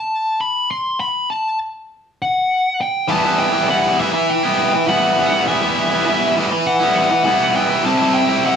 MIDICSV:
0, 0, Header, 1, 4, 480
1, 0, Start_track
1, 0, Key_signature, 1, "minor"
1, 0, Tempo, 596421
1, 562, Time_signature, 4, 2, 24, 8
1, 6891, End_track
2, 0, Start_track
2, 0, Title_t, "Lead electric guitar"
2, 0, Program_c, 0, 29
2, 0, Note_on_c, 0, 81, 90
2, 328, Note_on_c, 0, 83, 87
2, 337, Note_off_c, 0, 81, 0
2, 568, Note_off_c, 0, 83, 0
2, 571, Note_on_c, 0, 84, 103
2, 804, Note_off_c, 0, 84, 0
2, 807, Note_on_c, 0, 83, 99
2, 1030, Note_off_c, 0, 83, 0
2, 1048, Note_on_c, 0, 81, 83
2, 1270, Note_off_c, 0, 81, 0
2, 1788, Note_on_c, 0, 78, 100
2, 2260, Note_off_c, 0, 78, 0
2, 2263, Note_on_c, 0, 79, 101
2, 2497, Note_off_c, 0, 79, 0
2, 2500, Note_on_c, 0, 81, 109
2, 2725, Note_off_c, 0, 81, 0
2, 2728, Note_on_c, 0, 79, 97
2, 2975, Note_off_c, 0, 79, 0
2, 2978, Note_on_c, 0, 78, 103
2, 3213, Note_on_c, 0, 76, 94
2, 3220, Note_off_c, 0, 78, 0
2, 3458, Note_off_c, 0, 76, 0
2, 3459, Note_on_c, 0, 79, 107
2, 3926, Note_off_c, 0, 79, 0
2, 3929, Note_on_c, 0, 78, 90
2, 4375, Note_off_c, 0, 78, 0
2, 4410, Note_on_c, 0, 76, 80
2, 5094, Note_off_c, 0, 76, 0
2, 5366, Note_on_c, 0, 78, 97
2, 5591, Note_off_c, 0, 78, 0
2, 5600, Note_on_c, 0, 78, 113
2, 6080, Note_off_c, 0, 78, 0
2, 6083, Note_on_c, 0, 79, 102
2, 6319, Note_off_c, 0, 79, 0
2, 6322, Note_on_c, 0, 81, 110
2, 6543, Note_off_c, 0, 81, 0
2, 6553, Note_on_c, 0, 79, 104
2, 6778, Note_off_c, 0, 79, 0
2, 6805, Note_on_c, 0, 78, 117
2, 6891, Note_off_c, 0, 78, 0
2, 6891, End_track
3, 0, Start_track
3, 0, Title_t, "Distorted electric guitar"
3, 0, Program_c, 1, 30
3, 2479, Note_on_c, 1, 52, 95
3, 2487, Note_on_c, 1, 55, 90
3, 2495, Note_on_c, 1, 59, 102
3, 2502, Note_on_c, 1, 64, 102
3, 2604, Note_off_c, 1, 64, 0
3, 2607, Note_on_c, 1, 64, 73
3, 2620, Note_off_c, 1, 59, 0
3, 2623, Note_on_c, 1, 59, 73
3, 2627, Note_off_c, 1, 55, 0
3, 2630, Note_on_c, 1, 55, 55
3, 2832, Note_off_c, 1, 64, 0
3, 2835, Note_on_c, 1, 64, 70
3, 2843, Note_off_c, 1, 59, 0
3, 2847, Note_on_c, 1, 59, 63
3, 2856, Note_off_c, 1, 55, 0
3, 2859, Note_on_c, 1, 55, 53
3, 2950, Note_off_c, 1, 52, 0
3, 2953, Note_on_c, 1, 52, 107
3, 2963, Note_off_c, 1, 55, 0
3, 2966, Note_on_c, 1, 55, 99
3, 2970, Note_off_c, 1, 59, 0
3, 2973, Note_off_c, 1, 64, 0
3, 2973, Note_on_c, 1, 59, 103
3, 2977, Note_on_c, 1, 64, 108
3, 3200, Note_off_c, 1, 52, 0
3, 3204, Note_on_c, 1, 52, 74
3, 3211, Note_off_c, 1, 55, 0
3, 3214, Note_on_c, 1, 55, 79
3, 3216, Note_off_c, 1, 59, 0
3, 3219, Note_on_c, 1, 59, 83
3, 3229, Note_off_c, 1, 64, 0
3, 3232, Note_on_c, 1, 64, 85
3, 3322, Note_off_c, 1, 59, 0
3, 3327, Note_off_c, 1, 64, 0
3, 3331, Note_off_c, 1, 55, 0
3, 3569, Note_on_c, 1, 64, 75
3, 3582, Note_on_c, 1, 59, 76
3, 3593, Note_on_c, 1, 55, 60
3, 3812, Note_off_c, 1, 59, 0
3, 3814, Note_off_c, 1, 64, 0
3, 3822, Note_off_c, 1, 55, 0
3, 3919, Note_off_c, 1, 52, 0
3, 3922, Note_on_c, 1, 52, 92
3, 3935, Note_on_c, 1, 55, 107
3, 3941, Note_on_c, 1, 59, 101
3, 3948, Note_on_c, 1, 64, 108
3, 4159, Note_off_c, 1, 52, 0
3, 4163, Note_on_c, 1, 52, 83
3, 4168, Note_off_c, 1, 55, 0
3, 4172, Note_off_c, 1, 59, 0
3, 4172, Note_on_c, 1, 55, 81
3, 4181, Note_on_c, 1, 59, 85
3, 4184, Note_off_c, 1, 64, 0
3, 4187, Note_on_c, 1, 64, 92
3, 4274, Note_off_c, 1, 64, 0
3, 4277, Note_on_c, 1, 64, 85
3, 4284, Note_off_c, 1, 59, 0
3, 4294, Note_on_c, 1, 59, 77
3, 4300, Note_off_c, 1, 55, 0
3, 4304, Note_on_c, 1, 55, 67
3, 4405, Note_off_c, 1, 52, 0
3, 4408, Note_on_c, 1, 52, 99
3, 4416, Note_off_c, 1, 59, 0
3, 4418, Note_off_c, 1, 55, 0
3, 4421, Note_on_c, 1, 55, 105
3, 4425, Note_on_c, 1, 59, 100
3, 4431, Note_off_c, 1, 64, 0
3, 4434, Note_on_c, 1, 64, 106
3, 4515, Note_off_c, 1, 64, 0
3, 4518, Note_on_c, 1, 64, 75
3, 4524, Note_off_c, 1, 59, 0
3, 4534, Note_on_c, 1, 59, 66
3, 4542, Note_off_c, 1, 55, 0
3, 4545, Note_on_c, 1, 55, 62
3, 4754, Note_off_c, 1, 64, 0
3, 4757, Note_on_c, 1, 64, 73
3, 4768, Note_off_c, 1, 59, 0
3, 4777, Note_on_c, 1, 59, 68
3, 4784, Note_off_c, 1, 55, 0
3, 4787, Note_on_c, 1, 55, 64
3, 4873, Note_off_c, 1, 52, 0
3, 4876, Note_on_c, 1, 52, 98
3, 4886, Note_off_c, 1, 55, 0
3, 4886, Note_off_c, 1, 59, 0
3, 4889, Note_on_c, 1, 55, 101
3, 4896, Note_on_c, 1, 59, 96
3, 4904, Note_off_c, 1, 64, 0
3, 4907, Note_on_c, 1, 64, 117
3, 5115, Note_off_c, 1, 52, 0
3, 5118, Note_on_c, 1, 52, 72
3, 5122, Note_off_c, 1, 55, 0
3, 5125, Note_on_c, 1, 55, 73
3, 5130, Note_off_c, 1, 59, 0
3, 5140, Note_off_c, 1, 64, 0
3, 5140, Note_on_c, 1, 59, 87
3, 5143, Note_on_c, 1, 64, 95
3, 5236, Note_off_c, 1, 59, 0
3, 5236, Note_off_c, 1, 64, 0
3, 5245, Note_off_c, 1, 55, 0
3, 5469, Note_on_c, 1, 64, 81
3, 5479, Note_on_c, 1, 59, 64
3, 5495, Note_on_c, 1, 55, 64
3, 5708, Note_off_c, 1, 59, 0
3, 5711, Note_off_c, 1, 64, 0
3, 5720, Note_off_c, 1, 55, 0
3, 5824, Note_off_c, 1, 52, 0
3, 5827, Note_on_c, 1, 52, 91
3, 5836, Note_on_c, 1, 55, 89
3, 5850, Note_on_c, 1, 59, 95
3, 5855, Note_on_c, 1, 64, 107
3, 6066, Note_off_c, 1, 52, 0
3, 6069, Note_on_c, 1, 52, 87
3, 6074, Note_off_c, 1, 55, 0
3, 6077, Note_on_c, 1, 55, 81
3, 6080, Note_off_c, 1, 59, 0
3, 6088, Note_off_c, 1, 64, 0
3, 6090, Note_on_c, 1, 59, 85
3, 6091, Note_on_c, 1, 64, 86
3, 6189, Note_off_c, 1, 64, 0
3, 6192, Note_on_c, 1, 64, 85
3, 6193, Note_off_c, 1, 59, 0
3, 6202, Note_on_c, 1, 59, 75
3, 6217, Note_off_c, 1, 55, 0
3, 6220, Note_on_c, 1, 55, 69
3, 6303, Note_off_c, 1, 52, 0
3, 6306, Note_off_c, 1, 59, 0
3, 6307, Note_on_c, 1, 48, 90
3, 6318, Note_off_c, 1, 55, 0
3, 6322, Note_on_c, 1, 55, 101
3, 6329, Note_on_c, 1, 60, 99
3, 6332, Note_off_c, 1, 64, 0
3, 6335, Note_on_c, 1, 64, 101
3, 6425, Note_off_c, 1, 64, 0
3, 6428, Note_on_c, 1, 64, 74
3, 6442, Note_off_c, 1, 60, 0
3, 6445, Note_on_c, 1, 60, 70
3, 6452, Note_off_c, 1, 55, 0
3, 6455, Note_on_c, 1, 55, 59
3, 6669, Note_off_c, 1, 64, 0
3, 6672, Note_on_c, 1, 64, 74
3, 6681, Note_off_c, 1, 60, 0
3, 6684, Note_on_c, 1, 60, 69
3, 6691, Note_off_c, 1, 55, 0
3, 6695, Note_on_c, 1, 55, 61
3, 6785, Note_off_c, 1, 48, 0
3, 6788, Note_on_c, 1, 48, 104
3, 6798, Note_off_c, 1, 55, 0
3, 6801, Note_on_c, 1, 55, 109
3, 6802, Note_off_c, 1, 60, 0
3, 6805, Note_on_c, 1, 60, 103
3, 6810, Note_off_c, 1, 64, 0
3, 6813, Note_on_c, 1, 64, 110
3, 6891, Note_off_c, 1, 48, 0
3, 6891, Note_off_c, 1, 55, 0
3, 6891, Note_off_c, 1, 60, 0
3, 6891, Note_off_c, 1, 64, 0
3, 6891, End_track
4, 0, Start_track
4, 0, Title_t, "Muted distorted electric guitar strokes"
4, 3331, Note_on_c, 9, 29, 50
4, 3411, Note_off_c, 9, 29, 0
4, 3817, Note_on_c, 9, 29, 54
4, 3898, Note_off_c, 9, 29, 0
4, 5239, Note_on_c, 9, 29, 52
4, 5319, Note_off_c, 9, 29, 0
4, 5714, Note_on_c, 9, 29, 52
4, 5795, Note_off_c, 9, 29, 0
4, 6891, End_track
0, 0, End_of_file